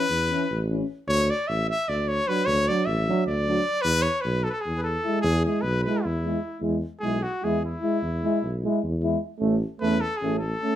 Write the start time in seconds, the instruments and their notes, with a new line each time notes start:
Already playing: trumpet B4
0.09 tuba E2
0.30 trombone E3, euphonium C#4
0.51 tuba A1
0.70 trombone E3, euphonium C#4
1.07 tuba D2, trumpet C#5
1.30 trumpet D5
1.48 tuba A1, trumpet E5
1.70 trumpet E5
1.88 tuba D2, trumpet D5
2.08 trumpet C#5
2.28 trombone F#3, euphonium D4, trumpet B4
2.46 tuba D2, trumpet C#5
2.67 trombone F#3, euphonium D4, trumpet D5
2.85 tuba A1, trumpet E5
3.08 trombone F#3, euphonium D4
3.26 tuba D2, trumpet D5
3.48 trombone F#3, euphonium D4
3.82 tuba E2, trumpet B4
4.02 trumpet C#5
4.21 tuba B1, trumpet B4
4.44 trumpet A4
4.49 trumpet A4 B4
4.61 trumpet G#4
4.65 tuba E2
4.78 trumpet B4
4.84 trumpet A4
5.04 trombone G#3, euphonium E4
5.21 tuba E2, trumpet G#4
5.45 trombone G#3, euphonium E4, trumpet G#4
5.62 tuba B1, trumpet B4
5.84 trombone G#3, euphonium E4, trumpet B4
6.03 tuba E2, trumpet E4
6.24 trombone G#3, euphonium E4
6.61 tuba E2, trombone G#3, euphonium E4
7.00 tuba B1, trombone G#3, euphonium E4, trumpet G#4
7.23 trumpet F#4
7.43 tuba E2, trombone G#3, euphonium E4, trumpet G#4
7.65 trumpet E4
7.83 trombone G#3, euphonium E4
8.01 tuba E2
8.24 trombone G#3, euphonium E4
8.42 tuba B1
8.64 trombone G#3, euphonium E4
8.83 tuba E2
9.03 trombone G#3, euphonium E4
9.40 tuba A1, trombone A3, euphonium C#4
9.81 tuba E2, trombone A3, euphonium C#4, trumpet B4
10.01 trumpet A4
10.17 trumpet G#4
10.22 tuba A1, trombone A3, euphonium C#4
10.39 trumpet A4
10.62 trombone A3, euphonium C#4